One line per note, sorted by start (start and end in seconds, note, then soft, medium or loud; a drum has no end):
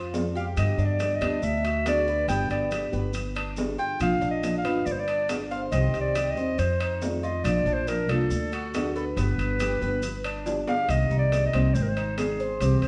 0.00 0.52 F2 medium
0.00 0.34 F4 medium
0.13 0.56 F3 soft
0.13 0.56 G#3 soft
0.13 0.56 C4 soft
0.13 0.57 F4 soft
0.13 low timbale medium
0.13 maracas medium
0.35 0.77 G4 medium
0.35 0.46 F5 medium
0.35 maracas soft
0.56 0.77 G2 medium
0.56 0.98 B2 medium
0.56 0.98 D3 medium
0.56 0.99 G3 medium
0.56 0.99 B3 medium
0.56 1.00 G4 medium
0.56 0.87 D#5 medium
0.56 high timbale medium
0.56 maracas medium
0.78 1.22 G2 medium
0.78 1.20 D4 medium
0.78 maracas soft
0.86 1.17 D5 medium
0.99 1.20 D3 medium
0.99 1.20 G3 soft
0.99 1.20 B3 soft
0.99 1.20 G4 medium
0.99 high timbale medium
0.99 low timbale medium
0.99 maracas medium
1.15 1.46 D#5 medium
1.21 1.41 D#2 medium
1.21 1.41 D3 medium
1.21 1.42 G3 medium
1.21 1.42 B3 medium
1.21 1.63 D4 medium
1.21 1.42 G4 medium
1.21 high timbale medium
1.21 maracas soft
1.42 2.24 D2 medium
1.42 1.86 E5 medium
1.42 muted nylon-string guitar stroke medium
1.42 maracas medium
1.64 2.06 F#4 medium
1.64 high timbale medium
1.64 maracas soft
1.84 2.26 D3 soft
1.84 2.27 A3 soft
1.84 2.28 D4 soft
1.84 2.28 F#4 soft
1.84 2.26 D5 medium
1.84 high timbale medium
1.84 low timbale medium
1.84 maracas medium
2.07 2.28 B4 medium
2.07 maracas soft
2.27 2.49 G1 loud
2.27 2.70 B2 medium
2.27 2.69 D3 medium
2.27 2.70 G3 medium
2.27 2.71 B3 medium
2.27 2.70 B3 medium
2.27 2.71 G4 medium
2.27 2.49 G5 medium
2.27 high timbale medium
2.27 maracas medium
2.50 2.91 G1 medium
2.50 2.90 D5 medium
2.50 high timbale medium
2.50 maracas soft
2.70 2.92 D3 soft
2.70 2.92 G3 medium
2.70 2.92 B3 soft
2.70 2.92 G4 medium
2.70 2.91 G4 soft
2.70 high timbale medium
2.70 low timbale medium
2.70 maracas medium
2.92 3.75 G1 medium
2.92 3.13 D3 medium
2.92 3.14 G3 soft
2.92 3.14 B3 medium
2.92 3.13 G4 medium
2.92 3.35 B4 medium
2.92 maracas soft
3.14 muted nylon-string guitar stroke medium
3.14 high timbale medium
3.14 maracas medium
3.35 3.78 D4 medium
3.35 high timbale medium
3.35 maracas soft
3.56 3.99 D3 soft
3.56 3.99 G3 soft
3.56 4.00 B3 soft
3.56 4.00 G4 medium
3.56 low timbale medium
3.56 maracas medium
3.78 4.20 F4 medium
3.78 3.99 G5 medium
3.78 maracas soft
3.99 4.21 A#1 medium
3.99 4.41 F3 medium
3.99 4.42 A#3 medium
3.99 4.43 D4 medium
3.99 4.43 F4 medium
3.99 4.28 F5 loud
3.99 high timbale medium
3.99 maracas medium
4.21 4.64 A#1 medium
4.21 4.63 D4 medium
4.21 maracas soft
4.31 4.57 D#5 medium
4.42 4.64 F3 soft
4.42 4.64 A#3 soft
4.42 4.64 D4 medium
4.42 4.63 F4 medium
4.42 high timbale medium
4.42 low timbale medium
4.42 maracas medium
4.58 4.87 F5 medium
4.64 4.85 G#1 medium
4.64 4.86 A#3 soft
4.64 5.07 B3 medium
4.64 4.86 D4 medium
4.64 4.85 F4 medium
4.64 high timbale medium
4.64 maracas soft
4.86 5.68 G1 medium
4.86 4.93 D5 medium
4.86 muted nylon-string guitar stroke medium
4.86 maracas medium
4.92 5.01 C5 medium
4.99 5.29 D5 medium
5.08 5.50 D4 medium
5.08 high timbale medium
5.08 maracas soft
5.29 5.71 D3 medium
5.29 5.72 G3 soft
5.29 5.72 B3 medium
5.29 5.73 G4 soft
5.29 high timbale medium
5.29 low timbale medium
5.29 maracas medium
5.51 5.72 C5 medium
5.51 5.61 F5 medium
5.51 maracas soft
5.72 5.93 C2 medium
5.72 6.15 C3 medium
5.72 6.14 D#3 medium
5.72 6.15 G3 medium
5.72 6.14 C4 medium
5.72 6.15 C4 medium
5.72 6.16 G4 medium
5.72 5.99 D#5 medium
5.72 high timbale medium
5.72 maracas medium
5.94 high timbale medium
5.94 maracas soft
6.01 6.32 D5 medium
6.15 6.36 D#3 soft
6.15 6.36 G3 soft
6.15 6.36 C4 soft
6.15 6.36 G4 medium
6.15 6.35 G4 medium
6.15 high timbale medium
6.15 low timbale medium
6.15 maracas medium
6.31 6.61 D#5 medium
6.36 6.57 D#2 medium
6.36 6.57 D#3 soft
6.36 6.58 G3 medium
6.36 6.58 C4 medium
6.36 6.57 G4 medium
6.36 6.79 C5 medium
6.36 maracas soft
6.58 7.41 F2 medium
6.58 7.02 C5 medium
6.58 muted nylon-string guitar stroke medium
6.58 high timbale medium
6.58 maracas medium
6.80 7.22 D#4 medium
6.80 high timbale medium
6.80 maracas soft
7.01 7.44 D#3 soft
7.01 7.44 A3 soft
7.01 7.44 C4 soft
7.01 7.45 F4 medium
7.01 low timbale medium
7.01 maracas medium
7.23 7.65 F4 medium
7.23 7.46 D#5 medium
7.23 maracas soft
7.44 7.65 A#1 loud
7.44 7.86 F3 medium
7.44 7.87 A#3 medium
7.44 7.87 D4 medium
7.44 7.88 F4 medium
7.44 7.75 D5 medium
7.44 high timbale medium
7.44 maracas medium
7.65 8.08 A#1 medium
7.65 8.08 D4 medium
7.65 maracas soft
7.73 7.89 C5 medium
7.87 8.08 F3 soft
7.87 8.09 A#3 medium
7.87 8.09 D4 soft
7.87 8.08 F4 soft
7.87 8.12 A#4 medium
7.87 high timbale medium
7.87 low timbale medium
7.87 maracas medium
8.08 8.29 C2 medium
8.08 8.31 A#3 medium
8.08 8.51 D4 medium
8.08 8.30 D4 medium
8.08 8.30 F4 medium
8.08 8.95 A4 medium
8.08 high timbale medium
8.08 maracas soft
8.30 9.13 D2 medium
8.30 muted nylon-string guitar stroke medium
8.30 maracas medium
8.52 8.94 F#4 medium
8.52 high timbale medium
8.52 maracas soft
8.74 9.16 D3 soft
8.74 9.16 A3 medium
8.74 9.17 D4 medium
8.74 9.17 F#4 medium
8.74 high timbale medium
8.74 low timbale medium
8.74 maracas medium
8.96 9.05 A4 medium
8.96 9.16 B4 medium
8.96 maracas soft
9.17 9.37 G1 loud
9.17 9.59 B2 medium
9.17 9.58 D3 medium
9.17 9.59 G3 medium
9.17 9.59 B3 medium
9.17 9.60 B3 medium
9.17 9.60 G4 medium
9.17 10.43 B4 medium
9.17 high timbale medium
9.17 maracas medium
9.38 9.79 G1 medium
9.38 high timbale medium
9.38 maracas soft
9.59 9.80 D3 medium
9.59 9.81 G3 medium
9.59 9.81 B3 soft
9.59 9.81 G4 medium
9.59 9.80 G4 medium
9.59 high timbale medium
9.59 low timbale medium
9.59 maracas medium
9.81 10.63 G1 medium
9.81 10.01 D3 soft
9.81 10.02 G3 medium
9.81 10.02 B3 medium
9.81 10.02 G4 medium
9.81 10.23 B4 medium
9.81 maracas soft
10.02 muted nylon-string guitar stroke medium
10.02 high timbale medium
10.02 maracas medium
10.24 10.66 D4 medium
10.24 high timbale medium
10.24 maracas soft
10.45 10.88 D3 soft
10.45 10.88 G3 soft
10.45 10.89 B3 medium
10.45 10.89 G4 medium
10.45 high timbale medium
10.45 maracas medium
10.67 10.89 G4 medium
10.67 10.92 F5 loud
10.67 low timbale medium
10.67 maracas soft
10.87 11.09 C2 medium
10.87 11.30 C3 medium
10.87 11.30 D#3 medium
10.87 11.31 A#3 medium
10.87 11.31 C4 medium
10.87 11.32 G4 medium
10.87 11.18 D#5 medium
10.87 high timbale medium
10.87 maracas medium
11.10 11.51 C2 medium
11.10 11.52 D#4 medium
11.10 maracas soft
11.18 11.45 D5 medium
11.31 11.52 D#3 medium
11.31 11.53 A#3 soft
11.31 11.52 C4 soft
11.31 11.51 G4 medium
11.31 high timbale medium
11.31 low timbale medium
11.31 maracas medium
11.46 11.76 D#5 medium
11.52 11.74 C2 medium
11.52 11.74 D#3 medium
11.52 11.74 A#3 medium
11.52 11.74 C4 medium
11.52 11.95 C4 medium
11.52 11.74 G4 medium
11.52 high timbale medium
11.52 maracas soft
11.74 12.57 G#1 loud
11.74 11.84 C5 medium
11.74 muted nylon-string guitar stroke soft
11.74 maracas medium
11.83 11.90 A#4 medium
11.89 12.18 C5 medium
11.97 12.38 D#4 medium
11.97 high timbale medium
11.97 maracas soft
12.18 12.60 D#3 soft
12.18 12.60 G#3 soft
12.18 12.61 C4 soft
12.18 12.63 G#4 medium
12.18 12.61 G#4 medium
12.18 high timbale medium
12.18 low timbale medium
12.18 maracas medium
12.40 12.60 C5 medium
12.40 maracas soft
12.61 12.81 C2 loud
12.61 12.88 C3 medium
12.61 12.88 E3 medium
12.61 12.88 G3 medium
12.61 12.88 C4 medium
12.61 12.88 E4 medium
12.61 12.82 G4 medium
12.61 high timbale medium
12.61 maracas medium
12.82 12.88 C2 medium
12.82 12.88 C5 medium
12.82 high timbale medium
12.82 maracas soft